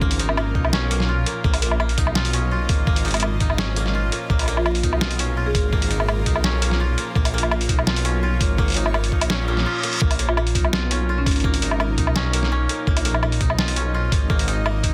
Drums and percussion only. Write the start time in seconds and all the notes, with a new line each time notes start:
0.01 kick
0.11 open hi-hat
0.19 closed hi-hat
0.29 low woodblock
0.37 low woodblock
0.55 kick
0.65 low woodblock
0.73 snare
0.91 closed hi-hat
1.00 snare
1.26 closed hi-hat
1.44 kick
1.54 open hi-hat, low woodblock
1.62 closed hi-hat
1.71 low woodblock
1.80 low woodblock
1.89 open hi-hat
1.98 kick, closed hi-hat
2.07 low woodblock
2.15 snare
2.25 open hi-hat
2.33 closed hi-hat
2.69 kick, open hi-hat
2.87 kick
2.96 open hi-hat
3.05 closed hi-hat
3.08 closed hi-hat
3.11 closed hi-hat
3.14 closed hi-hat, low woodblock
3.17 closed hi-hat
3.20 closed hi-hat, low woodblock
3.40 kick, closed hi-hat
3.50 low woodblock
3.58 snare
3.76 closed hi-hat
3.86 snare
4.12 closed hi-hat
4.30 kick
4.39 open hi-hat, low woodblock
4.42 low woodblock
4.44 low woodblock
4.46 closed hi-hat, low woodblock
4.57 low woodblock
4.66 low woodblock
4.75 open hi-hat
4.83 kick, closed hi-hat
4.93 low woodblock
5.01 snare
5.11 open hi-hat
5.19 closed hi-hat
5.55 kick, open hi-hat
5.73 kick
5.82 open hi-hat
5.91 closed hi-hat
6.00 low woodblock
6.09 low woodblock
6.26 kick, closed hi-hat
6.36 low woodblock
6.44 snare
6.62 closed hi-hat
6.71 snare
6.98 closed hi-hat
7.15 kick
7.25 open hi-hat, low woodblock
7.38 closed hi-hat
7.43 low woodblock
7.51 low woodblock
7.61 open hi-hat
7.69 kick, closed hi-hat
7.79 low woodblock
7.87 snare
7.96 open hi-hat
8.05 closed hi-hat
8.41 kick, open hi-hat
8.58 kick
8.68 open hi-hat
8.70 open hi-hat
8.72 open hi-hat
8.74 closed hi-hat, open hi-hat
8.86 low woodblock
8.94 low woodblock
9.04 open hi-hat
9.12 kick
9.21 closed hi-hat, low woodblock
9.30 snare
9.57 snare
9.83 closed hi-hat
9.93 closed hi-hat
10.01 kick
10.11 open hi-hat, low woodblock
10.19 closed hi-hat
10.29 low woodblock
10.37 low woodblock
10.47 open hi-hat
10.55 kick, closed hi-hat
10.65 low woodblock
10.73 snare
10.91 closed hi-hat, open hi-hat
11.26 kick, open hi-hat
11.31 open hi-hat
11.36 open hi-hat
11.40 open hi-hat
11.44 kick
11.54 open hi-hat
11.62 closed hi-hat
11.71 low woodblock
11.80 low woodblock
11.98 kick, closed hi-hat
12.07 low woodblock
12.16 snare
12.33 closed hi-hat
12.43 snare
12.69 closed hi-hat
12.87 kick
12.97 open hi-hat, low woodblock
13.05 closed hi-hat
13.14 low woodblock
13.23 low woodblock
13.32 open hi-hat
13.41 kick, closed hi-hat
13.50 low woodblock
13.59 snare
13.68 open hi-hat
13.76 closed hi-hat
14.12 kick, open hi-hat
14.30 kick
14.39 open hi-hat
14.48 closed hi-hat
14.66 low woodblock
14.83 kick, closed hi-hat